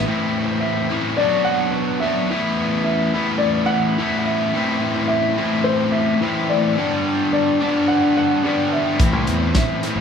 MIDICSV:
0, 0, Header, 1, 5, 480
1, 0, Start_track
1, 0, Tempo, 558140
1, 60, Time_signature, 4, 2, 24, 8
1, 8605, End_track
2, 0, Start_track
2, 0, Title_t, "Upright piano"
2, 0, Program_c, 0, 0
2, 0, Note_on_c, 0, 76, 91
2, 258, Note_off_c, 0, 76, 0
2, 518, Note_on_c, 0, 76, 77
2, 1003, Note_on_c, 0, 74, 82
2, 1026, Note_off_c, 0, 76, 0
2, 1244, Note_on_c, 0, 78, 104
2, 1261, Note_off_c, 0, 74, 0
2, 1720, Note_on_c, 0, 76, 90
2, 1749, Note_off_c, 0, 78, 0
2, 2179, Note_off_c, 0, 76, 0
2, 2445, Note_on_c, 0, 76, 74
2, 2901, Note_off_c, 0, 76, 0
2, 2906, Note_on_c, 0, 74, 83
2, 3148, Note_on_c, 0, 78, 108
2, 3174, Note_off_c, 0, 74, 0
2, 3584, Note_off_c, 0, 78, 0
2, 3597, Note_on_c, 0, 78, 60
2, 3653, Note_on_c, 0, 76, 82
2, 3662, Note_off_c, 0, 78, 0
2, 4106, Note_off_c, 0, 76, 0
2, 4366, Note_on_c, 0, 76, 85
2, 4822, Note_off_c, 0, 76, 0
2, 4851, Note_on_c, 0, 72, 86
2, 5081, Note_off_c, 0, 72, 0
2, 5089, Note_on_c, 0, 76, 94
2, 5584, Note_on_c, 0, 74, 77
2, 5592, Note_off_c, 0, 76, 0
2, 6030, Note_off_c, 0, 74, 0
2, 6301, Note_on_c, 0, 74, 74
2, 6776, Note_on_c, 0, 78, 99
2, 6797, Note_off_c, 0, 74, 0
2, 7016, Note_off_c, 0, 78, 0
2, 7029, Note_on_c, 0, 78, 100
2, 7472, Note_off_c, 0, 78, 0
2, 7506, Note_on_c, 0, 76, 78
2, 7950, Note_off_c, 0, 76, 0
2, 8230, Note_on_c, 0, 76, 79
2, 8605, Note_off_c, 0, 76, 0
2, 8605, End_track
3, 0, Start_track
3, 0, Title_t, "Distorted electric guitar"
3, 0, Program_c, 1, 30
3, 47, Note_on_c, 1, 45, 69
3, 58, Note_on_c, 1, 52, 78
3, 62, Note_on_c, 1, 57, 82
3, 65, Note_on_c, 1, 60, 82
3, 70, Note_on_c, 1, 64, 93
3, 760, Note_off_c, 1, 64, 0
3, 761, Note_off_c, 1, 45, 0
3, 767, Note_off_c, 1, 52, 0
3, 770, Note_off_c, 1, 60, 0
3, 770, Note_on_c, 1, 64, 75
3, 780, Note_off_c, 1, 57, 0
3, 780, Note_on_c, 1, 60, 73
3, 783, Note_on_c, 1, 57, 66
3, 789, Note_on_c, 1, 52, 62
3, 794, Note_on_c, 1, 45, 57
3, 1003, Note_off_c, 1, 64, 0
3, 1007, Note_off_c, 1, 45, 0
3, 1007, Note_off_c, 1, 60, 0
3, 1010, Note_on_c, 1, 47, 82
3, 1012, Note_off_c, 1, 52, 0
3, 1017, Note_on_c, 1, 54, 85
3, 1023, Note_off_c, 1, 57, 0
3, 1026, Note_on_c, 1, 59, 80
3, 1029, Note_on_c, 1, 62, 81
3, 1037, Note_on_c, 1, 66, 80
3, 1724, Note_off_c, 1, 47, 0
3, 1727, Note_off_c, 1, 54, 0
3, 1729, Note_off_c, 1, 66, 0
3, 1732, Note_off_c, 1, 59, 0
3, 1733, Note_off_c, 1, 62, 0
3, 1739, Note_on_c, 1, 66, 72
3, 1746, Note_on_c, 1, 62, 67
3, 1752, Note_on_c, 1, 59, 70
3, 1757, Note_on_c, 1, 54, 72
3, 1763, Note_on_c, 1, 47, 60
3, 1968, Note_off_c, 1, 66, 0
3, 1971, Note_off_c, 1, 62, 0
3, 1974, Note_off_c, 1, 59, 0
3, 1976, Note_off_c, 1, 54, 0
3, 1979, Note_on_c, 1, 52, 79
3, 1980, Note_off_c, 1, 47, 0
3, 1988, Note_on_c, 1, 57, 82
3, 1994, Note_on_c, 1, 59, 88
3, 2001, Note_on_c, 1, 64, 87
3, 2696, Note_off_c, 1, 59, 0
3, 2696, Note_off_c, 1, 64, 0
3, 2699, Note_on_c, 1, 64, 73
3, 2710, Note_on_c, 1, 59, 67
3, 2715, Note_off_c, 1, 57, 0
3, 2718, Note_on_c, 1, 57, 58
3, 2719, Note_off_c, 1, 52, 0
3, 2722, Note_on_c, 1, 52, 59
3, 3409, Note_off_c, 1, 64, 0
3, 3411, Note_off_c, 1, 52, 0
3, 3414, Note_off_c, 1, 59, 0
3, 3418, Note_off_c, 1, 57, 0
3, 3421, Note_on_c, 1, 52, 71
3, 3427, Note_on_c, 1, 57, 79
3, 3434, Note_on_c, 1, 59, 74
3, 3444, Note_on_c, 1, 64, 78
3, 3890, Note_off_c, 1, 52, 0
3, 3892, Note_off_c, 1, 57, 0
3, 3896, Note_off_c, 1, 59, 0
3, 3901, Note_off_c, 1, 64, 0
3, 3904, Note_on_c, 1, 45, 85
3, 3910, Note_on_c, 1, 52, 83
3, 3914, Note_on_c, 1, 57, 84
3, 3919, Note_on_c, 1, 60, 84
3, 3925, Note_on_c, 1, 64, 90
3, 4610, Note_off_c, 1, 64, 0
3, 4611, Note_off_c, 1, 45, 0
3, 4613, Note_off_c, 1, 60, 0
3, 4614, Note_off_c, 1, 52, 0
3, 4616, Note_off_c, 1, 57, 0
3, 4620, Note_on_c, 1, 64, 76
3, 4623, Note_on_c, 1, 60, 65
3, 4632, Note_on_c, 1, 57, 66
3, 4633, Note_on_c, 1, 52, 61
3, 4641, Note_on_c, 1, 45, 55
3, 5328, Note_off_c, 1, 64, 0
3, 5330, Note_off_c, 1, 60, 0
3, 5332, Note_off_c, 1, 45, 0
3, 5334, Note_off_c, 1, 57, 0
3, 5335, Note_off_c, 1, 52, 0
3, 5342, Note_on_c, 1, 45, 69
3, 5345, Note_on_c, 1, 52, 73
3, 5352, Note_on_c, 1, 57, 72
3, 5356, Note_on_c, 1, 60, 71
3, 5362, Note_on_c, 1, 64, 76
3, 5809, Note_off_c, 1, 45, 0
3, 5810, Note_off_c, 1, 52, 0
3, 5814, Note_off_c, 1, 57, 0
3, 5816, Note_off_c, 1, 60, 0
3, 5819, Note_off_c, 1, 64, 0
3, 5823, Note_on_c, 1, 43, 79
3, 5828, Note_on_c, 1, 50, 73
3, 5835, Note_on_c, 1, 55, 84
3, 5839, Note_on_c, 1, 59, 80
3, 5844, Note_on_c, 1, 62, 92
3, 6526, Note_off_c, 1, 62, 0
3, 6529, Note_off_c, 1, 43, 0
3, 6531, Note_off_c, 1, 50, 0
3, 6534, Note_off_c, 1, 59, 0
3, 6535, Note_off_c, 1, 55, 0
3, 6537, Note_on_c, 1, 62, 75
3, 6544, Note_on_c, 1, 59, 70
3, 6546, Note_on_c, 1, 55, 60
3, 6555, Note_on_c, 1, 50, 63
3, 6561, Note_on_c, 1, 43, 63
3, 7244, Note_off_c, 1, 43, 0
3, 7245, Note_off_c, 1, 62, 0
3, 7248, Note_off_c, 1, 59, 0
3, 7249, Note_off_c, 1, 55, 0
3, 7250, Note_off_c, 1, 50, 0
3, 7254, Note_on_c, 1, 43, 71
3, 7260, Note_on_c, 1, 50, 70
3, 7265, Note_on_c, 1, 55, 74
3, 7271, Note_on_c, 1, 59, 73
3, 7277, Note_on_c, 1, 62, 72
3, 7723, Note_off_c, 1, 43, 0
3, 7726, Note_off_c, 1, 50, 0
3, 7729, Note_off_c, 1, 55, 0
3, 7730, Note_on_c, 1, 45, 82
3, 7731, Note_off_c, 1, 59, 0
3, 7734, Note_off_c, 1, 62, 0
3, 7734, Note_on_c, 1, 52, 76
3, 7738, Note_on_c, 1, 57, 80
3, 7746, Note_on_c, 1, 60, 85
3, 7749, Note_on_c, 1, 64, 90
3, 8440, Note_off_c, 1, 45, 0
3, 8442, Note_off_c, 1, 52, 0
3, 8444, Note_off_c, 1, 64, 0
3, 8446, Note_off_c, 1, 60, 0
3, 8454, Note_on_c, 1, 64, 74
3, 8456, Note_on_c, 1, 60, 65
3, 8461, Note_off_c, 1, 57, 0
3, 8464, Note_on_c, 1, 57, 63
3, 8467, Note_on_c, 1, 52, 62
3, 8473, Note_on_c, 1, 45, 55
3, 8605, Note_off_c, 1, 45, 0
3, 8605, Note_off_c, 1, 52, 0
3, 8605, Note_off_c, 1, 57, 0
3, 8605, Note_off_c, 1, 60, 0
3, 8605, Note_off_c, 1, 64, 0
3, 8605, End_track
4, 0, Start_track
4, 0, Title_t, "Fingered electric bass"
4, 0, Program_c, 2, 33
4, 7736, Note_on_c, 2, 33, 86
4, 7850, Note_off_c, 2, 33, 0
4, 7850, Note_on_c, 2, 36, 76
4, 7959, Note_off_c, 2, 36, 0
4, 7979, Note_on_c, 2, 40, 73
4, 8188, Note_off_c, 2, 40, 0
4, 8562, Note_on_c, 2, 33, 75
4, 8605, Note_off_c, 2, 33, 0
4, 8605, End_track
5, 0, Start_track
5, 0, Title_t, "Drums"
5, 7736, Note_on_c, 9, 42, 87
5, 7737, Note_on_c, 9, 36, 105
5, 7822, Note_off_c, 9, 42, 0
5, 7823, Note_off_c, 9, 36, 0
5, 7974, Note_on_c, 9, 42, 66
5, 8060, Note_off_c, 9, 42, 0
5, 8210, Note_on_c, 9, 42, 80
5, 8211, Note_on_c, 9, 38, 93
5, 8214, Note_on_c, 9, 36, 96
5, 8296, Note_off_c, 9, 42, 0
5, 8297, Note_off_c, 9, 38, 0
5, 8300, Note_off_c, 9, 36, 0
5, 8454, Note_on_c, 9, 42, 60
5, 8540, Note_off_c, 9, 42, 0
5, 8605, End_track
0, 0, End_of_file